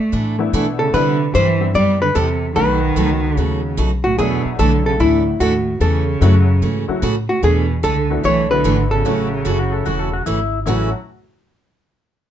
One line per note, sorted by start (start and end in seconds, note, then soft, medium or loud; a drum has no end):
0.00 0.35 A3 medium
0.00 0.35 D5 medium
0.12 0.52 A2 medium
0.12 0.35 E3 soft
0.12 0.35 A3 medium
0.12 0.35 D4 medium
0.12 0.35 E4 medium
0.12 0.35 A4 medium
0.38 0.91 E3 medium
0.38 0.91 A3 medium
0.38 0.91 B3 medium
0.38 0.91 D4 medium
0.38 0.92 E4 medium
0.53 0.93 B2 medium
0.53 0.65 E3 medium
0.53 0.65 A3 medium
0.53 0.66 D4 medium
0.53 0.66 E4 medium
0.53 0.66 A4 medium
0.79 0.93 C#3 medium
0.79 0.94 A4 medium
0.93 1.33 C3 medium
0.93 1.16 C3 medium
0.93 1.32 D3 medium
0.93 1.17 G3 medium
0.93 1.16 G3 medium
0.93 1.18 B3 medium
0.93 1.16 B3 medium
0.93 1.18 C4 medium
0.93 1.18 D4 medium
0.93 1.16 E4 medium
0.93 1.18 E4 medium
0.93 1.17 G4 medium
0.93 1.34 B4 loud
1.35 1.74 G2 medium
1.35 1.46 C3 medium
1.35 1.72 E3 medium
1.35 1.46 G3 medium
1.35 1.47 B3 medium
1.35 1.47 E4 medium
1.35 1.47 G4 medium
1.35 1.75 C5 loud
1.60 1.73 G3 medium
1.60 1.73 B3 medium
1.60 1.74 C4 medium
1.60 1.74 D4 medium
1.60 1.74 E4 medium
1.74 2.14 F#2 medium
1.74 1.97 C3 soft
1.74 1.99 G3 medium
1.74 1.97 G3 medium
1.74 1.97 B3 medium
1.74 1.98 E4 medium
1.74 1.98 G4 medium
1.74 2.01 D5 loud
2.02 2.15 D3 medium
2.02 2.16 B4 loud
2.15 2.55 E2 medium
2.15 2.27 C3 medium
2.15 2.53 C3 medium
2.15 2.27 G3 medium
2.15 2.28 B3 medium
2.15 2.28 E4 medium
2.15 2.28 G4 medium
2.15 2.57 A4 medium
2.55 2.96 B1 medium
2.55 2.78 B2 medium
2.55 3.36 D#3 loud
2.55 3.69 F#3 medium
2.55 2.78 F#3 medium
2.55 3.69 A3 medium
2.55 2.78 A3 medium
2.55 3.69 B3 medium
2.55 3.69 D#4 medium
2.55 2.79 D#4 medium
2.55 3.70 F#4 medium
2.55 2.79 F#4 medium
2.55 3.37 B4 loud
2.96 3.36 C#2 medium
2.96 3.08 B2 medium
2.96 3.08 F#3 medium
2.96 3.09 A3 medium
2.96 3.09 D#4 medium
2.96 3.09 F#4 medium
3.36 3.77 D#2 medium
3.36 3.59 B2 medium
3.36 3.74 C#3 loud
3.36 3.60 F#3 medium
3.36 3.60 A3 medium
3.36 3.60 D#4 medium
3.36 3.60 F#4 medium
3.36 3.74 A4 loud
3.77 4.17 B1 medium
3.77 3.89 B2 medium
3.77 3.90 F#3 medium
3.77 3.90 A3 medium
3.77 3.90 D#4 medium
3.77 3.90 F#4 medium
4.04 4.18 A2 medium
4.04 4.18 F#4 medium
4.18 4.43 E2 medium
4.18 4.57 B2 medium
4.18 4.41 E3 medium
4.18 5.31 F#3 medium
4.18 5.32 A3 medium
4.18 4.41 A3 medium
4.18 5.32 B3 medium
4.18 5.32 D4 medium
4.18 4.41 D4 medium
4.18 4.41 E4 medium
4.18 5.32 E4 medium
4.18 4.59 G#4 medium
4.18 4.41 A4 medium
4.45 muted upright bass stroke soft
4.59 4.98 B1 loud
4.59 4.84 D3 medium
4.59 4.71 E3 medium
4.59 4.71 A3 medium
4.59 4.71 D4 medium
4.59 4.71 E4 medium
4.59 4.85 A4 loud
4.59 4.71 A4 medium
4.85 4.99 C#3 medium
4.85 5.00 A4 medium
4.99 5.39 D2 medium
4.99 5.37 A2 medium
4.99 5.22 E3 medium
4.99 5.22 A3 medium
4.99 5.22 D4 medium
4.99 5.42 E4 medium
4.99 5.22 E4 medium
4.99 5.22 A4 soft
5.40 5.79 D#2 medium
5.40 5.78 A2 medium
5.40 5.52 E3 medium
5.40 5.52 A3 medium
5.40 5.52 D4 medium
5.40 5.52 E4 medium
5.40 5.81 F#4 medium
5.40 5.53 A4 medium
5.80 6.20 E2 medium
5.80 6.03 C#3 medium
5.80 6.99 C#3 medium
5.80 6.03 E3 medium
5.80 6.03 A3 medium
5.80 6.03 C#4 medium
5.80 6.03 F#4 medium
5.80 6.99 A4 medium
6.21 6.61 F#2 loud
6.21 6.33 C#3 medium
6.21 6.33 E3 medium
6.21 6.45 F#3 medium
6.21 6.45 A3 medium
6.21 6.34 A3 medium
6.21 6.45 C#4 medium
6.21 6.34 C#4 medium
6.21 6.45 E4 medium
6.21 6.46 F#4 medium
6.21 6.34 F#4 medium
6.62 6.86 G#2 medium
6.62 6.84 C#3 soft
6.62 6.84 E3 medium
6.62 6.84 A3 medium
6.62 6.84 C#4 soft
6.62 6.85 F#4 medium
6.88 7.01 F#3 medium
6.88 7.01 A3 medium
6.88 7.01 C#4 medium
6.88 7.01 E4 medium
6.88 7.01 F#4 medium
6.88 muted upright bass stroke soft
7.02 7.42 A2 medium
7.02 7.14 C#3 medium
7.02 7.14 E3 medium
7.02 7.14 A3 medium
7.02 7.14 C#4 medium
7.02 7.15 F#4 medium
7.29 7.42 A2 medium
7.29 7.44 F#4 medium
7.43 7.82 E2 medium
7.43 7.81 B2 medium
7.43 7.65 E3 medium
7.43 7.65 A3 medium
7.43 7.65 D4 medium
7.43 7.65 E4 medium
7.43 7.83 G#4 loud
7.43 7.65 A4 medium
7.83 8.23 C#2 medium
7.83 8.22 D3 medium
7.83 7.95 E3 medium
7.83 7.95 A3 medium
7.83 7.95 D4 medium
7.83 7.96 E4 medium
7.83 8.25 A4 loud
7.83 7.96 A4 medium
8.10 8.23 A3 medium
8.10 8.23 B3 medium
8.10 8.23 D4 medium
8.10 8.23 E4 medium
8.10 8.23 F#4 medium
8.24 8.63 B1 medium
8.24 8.46 E3 medium
8.24 8.49 E3 medium
8.24 8.46 A3 medium
8.24 8.46 D4 medium
8.24 8.46 E4 medium
8.24 8.47 A4 medium
8.24 8.50 C#5 loud
8.50 8.88 D3 medium
8.50 9.02 A3 medium
8.50 9.02 B3 medium
8.50 9.03 D4 medium
8.50 9.03 E4 medium
8.50 9.03 F#4 medium
8.50 8.92 B4 loud
8.64 9.04 G#1 medium
8.64 8.76 E3 medium
8.64 8.76 A3 medium
8.64 8.77 D4 medium
8.64 8.77 E4 medium
8.64 8.77 A4 medium
8.91 10.23 C#3 medium
8.91 10.23 A4 medium
9.05 9.44 A1 medium
9.05 9.27 C#3 medium
9.05 9.27 E3 medium
9.05 10.18 F#3 medium
9.05 10.18 A3 medium
9.05 9.28 A3 medium
9.05 10.18 C#4 medium
9.05 9.28 C#4 medium
9.05 10.19 E4 medium
9.05 9.28 F#4 medium
9.05 10.19 F#4 medium
9.45 9.85 F#1 medium
9.45 9.57 C#3 medium
9.45 9.57 E3 medium
9.45 9.57 A3 medium
9.45 9.57 C#4 medium
9.45 9.58 F#4 medium
9.45 9.59 A4 medium
9.59 9.72 F#4 medium
9.72 9.86 A4 medium
9.85 10.25 E1 medium
9.85 10.08 C#3 medium
9.85 10.08 E3 medium
9.85 10.08 A3 medium
9.85 10.08 C#4 medium
9.85 9.99 F#4 medium
9.85 10.09 F#4 medium
9.99 10.12 A4 medium
10.13 10.26 F#4 medium
10.26 10.66 G#1 medium
10.26 10.38 C#3 medium
10.26 10.38 E3 medium
10.26 10.38 A3 medium
10.26 10.39 C#4 medium
10.26 10.59 E4 loud
10.26 10.39 F#4 medium
10.66 10.91 A1 medium
10.66 10.88 A2 medium
10.66 10.88 C#3 medium
10.66 10.88 E3 medium
10.66 10.91 F#3 medium
10.66 10.91 A3 medium
10.66 10.89 A3 medium
10.66 10.91 C#4 medium
10.66 10.89 C#4 medium
10.66 10.91 E4 medium
10.66 10.91 F#4 medium
10.66 10.89 F#4 medium